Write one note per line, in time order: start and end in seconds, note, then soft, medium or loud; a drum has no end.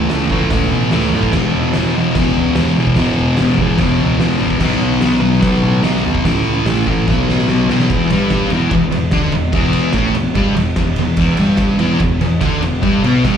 0.09 0.48 C#2 loud
0.09 0.29 A2 loud
0.09 0.30 E3 medium
0.09 0.30 A3 loud
0.09 snare loud
0.09 open hi-hat medium
0.30 0.50 A2 medium
0.30 0.51 E3 medium
0.30 0.51 A3 loud
0.30 kick medium
0.51 0.70 C#2 medium
0.51 0.90 A2 medium
0.51 0.92 E3 medium
0.51 0.92 A3 loud
0.51 kick loud
0.51 snare loud
0.51 open hi-hat medium
0.70 0.90 B2 medium
0.91 1.12 C#2 medium
0.91 1.13 A2 medium
0.91 1.15 E3 loud
0.91 1.14 A3 loud
0.91 snare loud
0.91 open hi-hat medium
1.12 1.32 F#2 medium
1.12 1.33 A2 medium
1.12 1.36 E3 medium
1.12 1.33 A3 medium
1.23 kick medium
1.33 1.53 E1 loud
1.33 1.76 E2 loud
1.33 1.75 B2 loud
1.33 1.78 E3 loud
1.33 kick loud
1.33 snare loud
1.33 crash loud
1.55 1.74 E1 medium
1.73 2.14 E1 medium
1.73 1.95 E2 loud
1.73 1.96 B2 loud
1.73 snare loud
1.73 open hi-hat medium
1.79 1.97 E3 loud
1.95 2.15 E2 loud
1.95 2.16 B2 medium
1.95 2.18 E3 loud
2.15 2.35 E1 loud
2.15 2.56 E2 medium
2.15 2.57 B2 loud
2.15 2.58 E3 loud
2.15 kick loud
2.15 snare loud
2.15 open hi-hat medium
2.37 2.56 C#2 loud
2.55 2.76 E1 medium
2.55 2.75 E2 medium
2.55 2.77 B2 loud
2.55 2.77 E3 medium
2.55 snare loud
2.55 open hi-hat medium
2.77 2.96 E1 medium
2.77 2.96 E2 loud
2.77 2.96 B2 medium
2.77 2.98 E3 loud
2.87 kick medium
2.96 3.16 E1 loud
2.96 3.38 E2 loud
2.96 3.38 B2 loud
2.96 3.39 E3 loud
2.96 kick loud
2.96 snare loud
2.96 open hi-hat medium
3.18 3.37 E1 medium
3.37 3.78 E1 loud
3.37 3.58 E2 medium
3.37 3.60 B2 loud
3.37 3.60 E3 medium
3.37 snare loud
3.37 open hi-hat medium
3.58 3.77 E2 medium
3.58 3.78 B2 loud
3.58 3.78 E3 loud
3.58 kick medium
3.78 3.98 E1 loud
3.78 4.17 E2 loud
3.78 4.18 B2 loud
3.78 4.19 E3 medium
3.78 kick loud
3.78 snare loud
3.78 open hi-hat medium
3.99 4.19 C#2 medium
4.19 4.39 E1 medium
4.19 4.38 E2 loud
4.19 4.39 B2 medium
4.19 4.39 E3 medium
4.19 snare loud
4.19 open hi-hat medium
4.39 4.60 A1 medium
4.39 4.59 E2 medium
4.39 4.59 B2 loud
4.39 4.60 E3 medium
4.51 kick medium
4.60 4.81 B1 medium
4.60 5.00 B2 loud
4.60 5.02 F#3 loud
4.60 5.02 B3 loud
4.60 kick loud
4.60 snare loud
4.60 crash loud
4.81 4.99 B1 medium
5.00 5.40 B1 loud
5.00 5.19 B2 medium
5.00 5.21 F#3 medium
5.00 5.21 B3 loud
5.00 snare loud
5.00 open hi-hat medium
5.21 5.39 B2 medium
5.21 5.40 F#3 loud
5.21 5.41 B3 loud
5.40 5.62 B1 medium
5.40 5.82 B2 medium
5.40 5.84 F#3 loud
5.40 5.84 B3 loud
5.40 kick loud
5.40 snare loud
5.40 open hi-hat medium
5.63 5.82 A2 loud
5.82 6.03 B1 medium
5.82 6.03 B2 medium
5.82 6.04 F#3 loud
5.82 6.04 B3 loud
5.82 snare loud
5.82 open hi-hat medium
6.03 6.24 D#2 medium
6.03 6.24 B2 medium
6.03 6.24 F#3 medium
6.03 6.25 B3 loud
6.15 kick medium
6.25 6.44 C#2 loud
6.25 6.66 A2 loud
6.25 6.67 E3 loud
6.25 6.68 A3 loud
6.25 kick loud
6.25 snare loud
6.25 open hi-hat medium
6.44 6.64 C#2 medium
6.65 7.04 A1 loud
6.65 6.86 A2 medium
6.65 6.87 E3 medium
6.65 snare loud
6.65 open hi-hat medium
6.69 6.88 A3 medium
6.87 7.07 A2 medium
6.87 7.07 E3 loud
6.87 7.08 A3 loud
6.87 kick medium
7.08 7.27 B1 loud
7.08 7.47 B2 loud
7.08 7.49 F#3 loud
7.08 7.49 B3 loud
7.08 kick loud
7.08 snare medium
7.27 7.47 A2 loud
7.27 snare medium
7.39 snare medium
7.48 7.67 B1 medium
7.48 7.69 B2 loud
7.48 7.70 F#3 loud
7.48 7.70 B3 medium
7.48 snare loud
7.68 7.88 B1 medium
7.68 7.89 B2 medium
7.68 7.89 F#3 medium
7.68 7.90 B3 medium
7.68 snare loud
7.80 snare loud
7.89 8.09 E1 loud
7.89 8.09 E2 loud
7.89 8.10 E3 loud
7.89 kick loud
7.89 ride loud
8.10 8.49 G1 medium
8.10 8.51 G2 medium
8.10 8.52 G3 loud
8.10 ride medium
8.30 kick loud
8.30 snare loud
8.30 ride loud
8.50 8.70 E1 loud
8.50 8.69 E2 medium
8.50 8.72 E3 loud
8.50 ride medium
8.71 8.90 E1 medium
8.71 8.88 E2 medium
8.71 kick loud
8.71 ride loud
8.92 9.11 E1 medium
8.92 9.08 E2 medium
8.92 ride medium
9.11 9.32 D2 loud
9.11 9.32 D3 loud
9.11 9.33 D4 loud
9.11 kick loud
9.11 snare loud
9.11 ride loud
9.32 9.52 E1 medium
9.32 9.49 E2 medium
9.32 ride medium
9.52 9.92 E1 loud
9.52 9.94 E2 loud
9.52 9.94 E3 loud
9.52 kick loud
9.52 ride loud
9.73 ride medium
9.93 10.14 A1 loud
9.93 10.14 A2 loud
9.93 10.15 A3 loud
9.93 kick loud
9.93 snare loud
9.93 ride loud
10.14 10.34 E1 medium
10.14 10.31 E2 medium
10.14 ride medium
10.35 10.54 G1 medium
10.35 10.55 G2 medium
10.35 10.56 G3 loud
10.35 kick loud
10.35 ride loud
10.55 10.75 E1 medium
10.55 10.73 E2 medium
10.55 ride medium
10.76 10.96 E1 medium
10.76 10.94 E2 medium
10.76 kick loud
10.76 snare loud
10.76 ride loud
10.96 11.16 E1 medium
10.96 11.14 E2 medium
10.96 ride medium
11.16 11.37 E1 medium
11.16 11.38 E2 medium
11.16 11.38 E3 loud
11.16 kick loud
11.16 crash loud
11.37 11.76 G1 medium
11.37 11.78 G2 medium
11.37 11.79 G3 loud
11.37 ride medium
11.57 kick loud
11.57 snare loud
11.57 ride loud
11.79 11.99 E1 loud
11.79 11.98 E2 loud
11.79 12.00 E3 loud
11.79 ride medium
11.99 12.19 E1 medium
11.99 12.16 E2 medium
11.99 kick loud
11.99 ride loud
12.20 12.39 E1 medium
12.20 12.37 E2 medium
12.20 ride medium
12.40 12.61 D2 loud
12.40 12.61 D3 medium
12.40 12.62 D4 loud
12.40 kick loud
12.40 snare loud
12.40 ride loud
12.61 12.82 E1 medium
12.61 12.78 E2 medium
12.61 ride medium
12.81 13.02 G1 medium
12.81 13.02 G2 loud
12.81 13.03 G3 loud
12.81 kick loud
12.81 ride medium
13.03 13.23 B1 medium
13.03 13.23 B2 medium
13.03 13.24 B3 loud
13.03 ride medium
13.23 13.37 G1 loud
13.23 13.37 G2 medium
13.23 13.37 G3 loud
13.23 kick loud
13.23 snare loud
13.23 ride loud